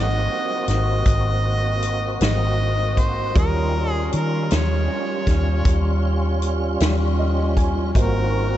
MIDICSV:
0, 0, Header, 1, 6, 480
1, 0, Start_track
1, 0, Tempo, 765209
1, 2106, Time_signature, 12, 3, 24, 8
1, 5377, End_track
2, 0, Start_track
2, 0, Title_t, "Harmonica"
2, 0, Program_c, 0, 22
2, 0, Note_on_c, 0, 75, 88
2, 405, Note_off_c, 0, 75, 0
2, 433, Note_on_c, 0, 75, 87
2, 1364, Note_off_c, 0, 75, 0
2, 1399, Note_on_c, 0, 75, 80
2, 1883, Note_on_c, 0, 72, 67
2, 1893, Note_off_c, 0, 75, 0
2, 2114, Note_off_c, 0, 72, 0
2, 2123, Note_on_c, 0, 70, 78
2, 2449, Note_off_c, 0, 70, 0
2, 2449, Note_on_c, 0, 68, 78
2, 2569, Note_off_c, 0, 68, 0
2, 2608, Note_on_c, 0, 70, 70
2, 2859, Note_on_c, 0, 73, 69
2, 2868, Note_off_c, 0, 70, 0
2, 3802, Note_off_c, 0, 73, 0
2, 5020, Note_on_c, 0, 70, 81
2, 5377, Note_off_c, 0, 70, 0
2, 5377, End_track
3, 0, Start_track
3, 0, Title_t, "Grand piano"
3, 0, Program_c, 1, 0
3, 0, Note_on_c, 1, 66, 49
3, 0, Note_on_c, 1, 70, 43
3, 0, Note_on_c, 1, 72, 43
3, 0, Note_on_c, 1, 75, 51
3, 2079, Note_off_c, 1, 66, 0
3, 2080, Note_off_c, 1, 70, 0
3, 2086, Note_off_c, 1, 72, 0
3, 2086, Note_off_c, 1, 75, 0
3, 2096, Note_on_c, 1, 65, 48
3, 2104, Note_on_c, 1, 55, 46
3, 2107, Note_on_c, 1, 70, 40
3, 2110, Note_on_c, 1, 73, 54
3, 4510, Note_on_c, 1, 75, 48
3, 4731, Note_off_c, 1, 75, 0
3, 4747, Note_on_c, 1, 80, 50
3, 4956, Note_off_c, 1, 65, 0
3, 4960, Note_off_c, 1, 55, 0
3, 4962, Note_off_c, 1, 70, 0
3, 4963, Note_off_c, 1, 73, 0
3, 4970, Note_off_c, 1, 80, 0
3, 4992, Note_on_c, 1, 63, 45
3, 4993, Note_on_c, 1, 66, 44
3, 4999, Note_on_c, 1, 58, 40
3, 5008, Note_on_c, 1, 72, 51
3, 5377, Note_off_c, 1, 58, 0
3, 5377, Note_off_c, 1, 63, 0
3, 5377, Note_off_c, 1, 66, 0
3, 5377, Note_off_c, 1, 72, 0
3, 5377, End_track
4, 0, Start_track
4, 0, Title_t, "Tonewheel organ"
4, 0, Program_c, 2, 16
4, 0, Note_on_c, 2, 58, 60
4, 0, Note_on_c, 2, 60, 58
4, 0, Note_on_c, 2, 66, 53
4, 2079, Note_off_c, 2, 58, 0
4, 2079, Note_off_c, 2, 60, 0
4, 2081, Note_off_c, 2, 66, 0
4, 2109, Note_on_c, 2, 61, 58
4, 2112, Note_on_c, 2, 65, 54
4, 2114, Note_on_c, 2, 55, 54
4, 4963, Note_off_c, 2, 61, 0
4, 4964, Note_off_c, 2, 65, 0
4, 4965, Note_off_c, 2, 55, 0
4, 4990, Note_on_c, 2, 60, 52
4, 4992, Note_on_c, 2, 58, 53
4, 4993, Note_on_c, 2, 66, 55
4, 5377, Note_off_c, 2, 58, 0
4, 5377, Note_off_c, 2, 60, 0
4, 5377, Note_off_c, 2, 66, 0
4, 5377, End_track
5, 0, Start_track
5, 0, Title_t, "Fingered electric bass"
5, 0, Program_c, 3, 33
5, 0, Note_on_c, 3, 32, 75
5, 166, Note_off_c, 3, 32, 0
5, 426, Note_on_c, 3, 32, 72
5, 647, Note_off_c, 3, 32, 0
5, 665, Note_on_c, 3, 32, 90
5, 1360, Note_off_c, 3, 32, 0
5, 1387, Note_on_c, 3, 32, 84
5, 2081, Note_off_c, 3, 32, 0
5, 2108, Note_on_c, 3, 39, 71
5, 2562, Note_off_c, 3, 39, 0
5, 2594, Note_on_c, 3, 51, 74
5, 2811, Note_off_c, 3, 51, 0
5, 2835, Note_on_c, 3, 39, 72
5, 3052, Note_off_c, 3, 39, 0
5, 3306, Note_on_c, 3, 39, 69
5, 3526, Note_off_c, 3, 39, 0
5, 3547, Note_on_c, 3, 39, 79
5, 4241, Note_off_c, 3, 39, 0
5, 4271, Note_on_c, 3, 39, 79
5, 4963, Note_off_c, 3, 39, 0
5, 4987, Note_on_c, 3, 32, 78
5, 5377, Note_off_c, 3, 32, 0
5, 5377, End_track
6, 0, Start_track
6, 0, Title_t, "Drums"
6, 425, Note_on_c, 9, 42, 55
6, 433, Note_on_c, 9, 38, 29
6, 487, Note_off_c, 9, 42, 0
6, 496, Note_off_c, 9, 38, 0
6, 662, Note_on_c, 9, 42, 79
6, 664, Note_on_c, 9, 36, 92
6, 725, Note_off_c, 9, 42, 0
6, 727, Note_off_c, 9, 36, 0
6, 1145, Note_on_c, 9, 42, 55
6, 1207, Note_off_c, 9, 42, 0
6, 1385, Note_on_c, 9, 42, 72
6, 1393, Note_on_c, 9, 38, 97
6, 1448, Note_off_c, 9, 42, 0
6, 1456, Note_off_c, 9, 38, 0
6, 1865, Note_on_c, 9, 36, 64
6, 1865, Note_on_c, 9, 42, 51
6, 1927, Note_off_c, 9, 36, 0
6, 1928, Note_off_c, 9, 42, 0
6, 2104, Note_on_c, 9, 42, 72
6, 2105, Note_on_c, 9, 36, 100
6, 2167, Note_off_c, 9, 42, 0
6, 2168, Note_off_c, 9, 36, 0
6, 2588, Note_on_c, 9, 42, 49
6, 2650, Note_off_c, 9, 42, 0
6, 2827, Note_on_c, 9, 42, 68
6, 2835, Note_on_c, 9, 38, 88
6, 2890, Note_off_c, 9, 42, 0
6, 2898, Note_off_c, 9, 38, 0
6, 3305, Note_on_c, 9, 42, 48
6, 3306, Note_on_c, 9, 36, 69
6, 3313, Note_on_c, 9, 38, 26
6, 3367, Note_off_c, 9, 42, 0
6, 3369, Note_off_c, 9, 36, 0
6, 3376, Note_off_c, 9, 38, 0
6, 3546, Note_on_c, 9, 36, 100
6, 3546, Note_on_c, 9, 42, 65
6, 3608, Note_off_c, 9, 36, 0
6, 3609, Note_off_c, 9, 42, 0
6, 4027, Note_on_c, 9, 42, 47
6, 4090, Note_off_c, 9, 42, 0
6, 4268, Note_on_c, 9, 42, 70
6, 4276, Note_on_c, 9, 38, 91
6, 4331, Note_off_c, 9, 42, 0
6, 4339, Note_off_c, 9, 38, 0
6, 4747, Note_on_c, 9, 36, 69
6, 4750, Note_on_c, 9, 42, 51
6, 4810, Note_off_c, 9, 36, 0
6, 4812, Note_off_c, 9, 42, 0
6, 4988, Note_on_c, 9, 36, 92
6, 4992, Note_on_c, 9, 42, 76
6, 5050, Note_off_c, 9, 36, 0
6, 5054, Note_off_c, 9, 42, 0
6, 5377, End_track
0, 0, End_of_file